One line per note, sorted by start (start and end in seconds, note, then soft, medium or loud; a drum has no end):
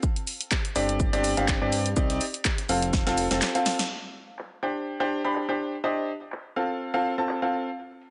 0.03 kick loud
0.03 shaker medium
0.16 closed hi-hat medium
0.27 open hi-hat medium
0.27 shaker medium
0.41 closed hi-hat medium
0.51 kick medium
0.51 snare loud
0.51 clap loud
0.51 shaker medium
0.65 closed hi-hat medium
0.76 1.10 G1 loud
0.76 1.10 C4 medium
0.76 1.10 D4 medium
0.76 1.10 G4 medium
0.76 1.10 D5 medium
0.76 snare soft
0.76 open hi-hat medium
0.76 shaker medium
0.89 closed hi-hat medium
1.00 kick loud
1.00 shaker medium
1.13 1.35 G1 loud
1.13 1.33 C4 loud
1.13 1.33 D4 medium
1.13 1.33 G4 medium
1.13 1.33 D5 loud
1.13 closed hi-hat soft
1.24 open hi-hat medium
1.24 shaker medium
1.37 1.59 G1 loud
1.37 1.58 C4 medium
1.37 1.58 D4 medium
1.37 1.58 G4 medium
1.37 1.58 F5 medium
1.37 snare soft
1.37 closed hi-hat medium
1.48 kick loud
1.48 snare loud
1.48 clap loud
1.48 shaker medium
1.61 1.94 G2 medium
1.61 1.87 C4 medium
1.61 1.87 D4 medium
1.61 1.87 G4 medium
1.61 1.87 D5 medium
1.72 snare soft
1.72 open hi-hat medium
1.72 shaker medium
1.86 closed hi-hat medium
1.97 2.20 C2 medium
1.97 2.23 C4 medium
1.97 2.23 D#4 medium
1.97 2.23 G4 medium
1.97 2.23 D5 medium
1.97 kick loud
1.97 shaker medium
2.10 snare medium
2.10 closed hi-hat medium
2.21 open hi-hat medium
2.21 shaker medium
2.34 closed hi-hat medium
2.45 kick medium
2.45 snare loud
2.45 clap loud
2.45 shaker medium
2.58 snare soft
2.58 closed hi-hat medium
2.69 3.04 F1 medium
2.69 3.03 C4 medium
2.69 3.03 F4 medium
2.69 3.03 A4 medium
2.69 3.03 F5 medium
2.69 open hi-hat medium
2.69 shaker medium
2.82 closed hi-hat soft
2.82 closed hi-hat medium
2.93 kick loud
2.93 snare medium
2.93 shaker medium
3.07 3.28 F1 loud
3.07 3.27 C4 loud
3.07 3.27 F4 medium
3.07 3.27 A4 medium
3.07 3.27 F5 loud
3.07 snare medium
3.07 closed hi-hat soft
3.18 open hi-hat medium
3.18 shaker medium
3.31 3.42 F1 loud
3.31 3.52 C4 medium
3.31 3.52 F4 medium
3.31 3.52 A4 medium
3.31 3.52 A5 medium
3.31 snare medium
3.31 closed hi-hat medium
3.42 snare medium
3.42 snare loud
3.42 clap loud
3.42 shaker medium
3.55 3.81 C4 medium
3.55 3.81 F4 medium
3.55 3.81 A4 medium
3.55 3.81 F5 medium
3.55 closed hi-hat soft
3.66 snare medium
3.66 open hi-hat medium
3.66 shaker medium
3.79 snare medium
3.79 closed hi-hat medium
4.14 open hi-hat medium
4.39 clap loud
4.63 4.97 D4 medium
4.63 4.97 G4 medium
4.63 4.97 C5 medium
4.63 4.97 G5 medium
5.00 5.20 D4 medium
5.00 5.20 G4 medium
5.00 5.20 C5 medium
5.00 5.20 G5 loud
5.24 5.45 D4 medium
5.24 5.45 G4 medium
5.24 5.45 C5 medium
5.24 5.45 B5 medium
5.35 clap loud
5.49 5.74 D4 medium
5.49 5.74 G4 medium
5.49 5.74 C5 medium
5.49 5.74 G5 medium
5.84 6.10 D4 medium
5.84 6.10 G4 medium
5.84 6.10 C5 medium
5.84 6.10 D#5 medium
6.08 open hi-hat medium
6.32 clap loud
6.56 6.91 C4 medium
6.56 6.91 F4 medium
6.56 6.91 A4 medium
6.56 6.91 F5 medium
6.94 7.14 C4 medium
6.94 7.14 F4 medium
6.94 7.14 A4 medium
6.94 7.14 F5 loud
7.05 open hi-hat medium
7.18 7.39 C4 medium
7.18 7.39 F4 medium
7.18 7.39 A4 medium
7.18 7.39 A5 medium
7.29 clap loud
7.42 7.68 C4 medium
7.42 7.68 F4 medium
7.42 7.68 A4 medium
7.42 7.68 F5 medium
7.53 open hi-hat medium
8.01 open hi-hat medium